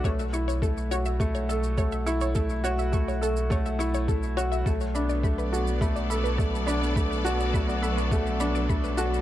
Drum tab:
SH |xxxxxxxxxxxxxxxx|xxxxxxxxxxxxxxxx|xxxxxxxxxxxxxxxx|xxxxxxxxxxxxxxxx|
BD |o---o---o---o---|o---o---o---o---|o---o---o---o---|o---o---o---o---|